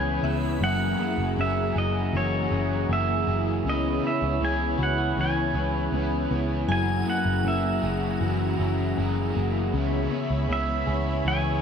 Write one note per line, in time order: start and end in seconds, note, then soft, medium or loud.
0.00 0.19 C#2 medium
0.00 0.61 C#3 medium
0.00 1.02 E3 medium
0.00 0.23 B3 medium
0.00 1.37 C#4 medium
0.00 0.24 E4 medium
0.00 0.58 E4 medium
0.00 0.24 G#4 medium
0.00 1.02 G#4 medium
0.00 11.62 G#4 medium
0.00 0.21 B4 medium
0.00 0.59 C#5 medium
0.00 0.63 G#5 loud
0.00 0.59 B5 loud
0.22 0.57 C#2 loud
0.22 0.69 B3 medium
0.22 0.62 G#4 medium
0.22 0.61 B4 medium
0.22 0.96 E5 medium
0.27 0.61 E4 soft
0.60 0.94 F#1 loud
0.60 3.65 F#2 medium
0.60 0.99 F#3 medium
0.60 0.99 A#3 medium
0.60 9.69 E4 medium
0.60 1.00 E4 medium
0.60 1.00 F#4 medium
0.60 0.97 G#4 medium
0.60 3.63 F#5 medium
0.60 1.35 F#5 loud
0.60 3.62 A#5 loud
0.99 3.26 A#3 medium
0.99 1.38 F#4 medium
0.99 1.37 G#4 soft
1.03 1.37 E4 soft
1.18 1.35 F#1 medium
1.36 1.71 F#1 medium
1.36 1.75 A#3 medium
1.36 2.51 C#4 medium
1.36 1.76 E4 medium
1.40 1.77 F#4 medium
1.40 1.73 G#4 medium
1.40 1.78 E5 loud
1.75 2.09 F#1 loud
1.75 2.15 F#4 medium
1.75 2.13 G#4 medium
1.75 2.90 G#4 medium
1.75 2.16 D#5 medium
1.80 2.14 E4 soft
2.13 2.47 F#1 loud
2.13 4.82 E3 medium
2.13 2.51 F#3 medium
2.13 2.52 A#3 medium
2.13 2.52 E4 medium
2.13 2.53 F#4 medium
2.13 2.50 G#4 medium
2.13 2.92 C#5 loud
2.51 2.85 F#1 loud
2.51 4.07 C#4 medium
2.51 2.91 F#4 soft
2.51 2.89 G#4 medium
2.57 2.90 E4 soft
2.89 3.23 F#1 loud
2.89 3.27 A#3 medium
2.89 3.28 E4 medium
2.89 3.29 F#4 medium
2.89 4.78 G#4 medium
2.89 3.44 E5 medium
2.94 3.26 G#4 medium
3.27 3.61 F#1 medium
3.27 3.73 A#3 medium
3.27 3.67 F#4 soft
3.27 3.65 G#4 medium
3.32 3.65 E4 soft
3.64 3.99 C#2 loud
3.64 4.03 C#3 medium
3.64 6.69 C#3 medium
3.64 4.04 B3 medium
3.64 4.04 E4 medium
3.64 4.05 G#4 medium
3.64 6.67 C#5 medium
3.64 6.67 B5 loud
3.69 4.02 B4 medium
3.69 4.06 D#5 loud
4.03 6.29 B3 medium
4.03 4.42 G#4 soft
4.03 4.41 B4 medium
4.03 4.44 E5 medium
4.08 4.41 E4 soft
4.22 4.39 C#2 medium
4.40 4.74 C#2 medium
4.40 4.79 B3 medium
4.40 5.54 C#4 medium
4.40 4.80 E4 medium
4.40 4.79 G#4 medium
4.45 4.76 B4 medium
4.45 4.82 G#5 loud
4.77 5.12 C#2 medium
4.77 4.98 F#4 medium
4.77 5.18 G#4 medium
4.77 5.16 B4 medium
4.83 5.17 E4 soft
4.83 5.20 F#5 loud
4.98 5.92 G#4 medium
5.16 5.50 C#2 medium
5.16 5.55 C#3 medium
5.16 7.09 E3 medium
5.16 5.55 B3 medium
5.16 5.56 E4 medium
5.16 5.55 G#4 medium
5.16 5.53 B4 medium
5.21 6.71 G#5 loud
5.54 5.88 C#2 loud
5.54 7.44 C#4 medium
5.54 5.94 G#4 soft
5.54 5.92 B4 medium
5.59 5.92 E4 soft
5.91 6.26 C#2 loud
5.91 6.30 B3 medium
5.91 6.31 E4 medium
5.91 7.09 G#4 medium
5.91 6.32 G#4 medium
5.97 6.29 B4 medium
6.30 6.65 C#2 loud
6.30 6.77 B3 medium
6.30 6.70 G#4 medium
6.30 6.69 B4 medium
6.36 6.69 E4 medium
6.68 7.02 F#1 loud
6.68 9.72 F#2 medium
6.68 7.07 F#3 medium
6.68 7.08 A#3 medium
6.68 7.08 E4 medium
6.68 7.08 F#4 medium
6.68 9.70 F#5 medium
6.68 9.35 G#5 medium
6.68 7.09 G#5 loud
6.68 9.69 A#5 medium
6.72 7.04 G#4 medium
7.05 9.34 A#3 medium
7.05 7.46 F#4 soft
7.05 7.44 G#4 medium
7.10 7.45 E4 soft
7.10 7.47 F#5 medium
7.26 7.43 F#1 loud
7.44 7.78 F#1 loud
7.44 7.83 A#3 medium
7.44 8.58 C#4 medium
7.44 7.84 E4 medium
7.44 7.83 F#4 medium
7.44 9.32 E5 medium
7.50 7.80 G#4 medium
7.81 8.17 F#1 loud
7.81 8.22 F#4 medium
7.81 8.20 G#4 medium
7.81 8.97 G#4 medium
7.87 8.21 E4 soft
8.20 8.54 F#1 loud
8.20 11.25 E3 medium
8.20 8.58 F#3 medium
8.20 8.59 A#3 medium
8.20 8.60 E4 medium
8.20 8.59 F#4 medium
8.20 8.56 G#4 medium
8.57 8.93 F#1 loud
8.57 10.14 C#4 medium
8.57 8.98 F#4 medium
8.57 8.96 G#4 medium
8.63 8.96 E4 medium
8.95 9.31 F#1 loud
8.95 9.34 A#3 medium
8.95 9.35 E4 medium
8.95 9.35 F#4 medium
8.95 10.87 G#4 medium
9.00 9.32 G#4 medium
9.34 9.69 F#1 loud
9.34 9.81 A#3 medium
9.34 9.74 F#4 medium
9.34 9.72 G#4 medium
9.39 9.74 E4 medium
9.71 10.07 C#2 loud
9.71 10.10 C#3 medium
9.71 11.62 C#3 medium
9.71 10.11 G#3 medium
9.71 10.12 B3 medium
9.71 10.11 E4 medium
9.71 11.62 C#5 medium
9.71 11.62 E5 medium
9.71 11.62 B5 medium
9.76 10.09 G#4 loud
10.10 11.62 B3 medium
10.10 10.50 E4 medium
10.10 10.48 G#4 medium
10.15 10.49 B3 soft
10.30 10.47 C#2 medium
10.47 10.82 C#2 medium
10.47 10.86 G#3 medium
10.47 10.87 B3 medium
10.47 11.62 C#4 medium
10.52 10.88 E4 medium
10.52 10.85 G#4 medium
10.52 11.29 E5 loud
10.86 11.21 C#2 loud
10.86 11.26 E4 medium
10.86 11.25 G#4 medium
10.86 11.62 G#4 medium
10.91 11.24 B3 medium
11.24 11.58 C#2 loud
11.24 11.62 C#3 medium
11.24 11.62 E3 medium
11.24 11.62 G#3 medium
11.24 11.62 B3 medium
11.24 11.62 E4 medium
11.24 11.60 G#4 loud
11.28 11.62 G#5 loud